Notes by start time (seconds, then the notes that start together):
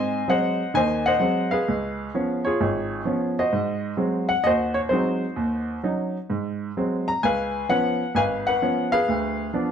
Already playing: G#2 C4 C5 D#5 G#5
0.28 F#3 G#3 C4 C5 D#5 F#5
0.74 D#2 D#3 C5 D#5 G#5
1.06 C5 D#5 F#5
1.20 F#3 G#3 C4
1.51 G#4 B4 F5
1.68 C#2
2.14 F3 B3 C#4
2.45 F4 G#4 C#5
2.61 G#1
3.05 F3 B3 C#4
3.39 F#4 C5 D#5
3.53 G#2
3.97 F#3 G#3 C4
4.29 F#5
4.44 D#2 F#4 C5 D#5
4.74 C#5
4.89 F#3 G#3 C4 D#4 C5
4.93 F#4
5.36 D#2
5.83 F#3 C#4 D#4
6.30 G#2
6.77 F#3 G#3 C4
7.08 A#5
7.23 C#2 B4 F5 G#5
7.69 F3 B3 C#4 B4 F#5
8.15 G#1 B4 F5 G#5
8.47 B4 F#5
8.62 F3 B3 C#4
8.92 G#4 B4 F5
9.08 D2
9.54 F3 B3 D4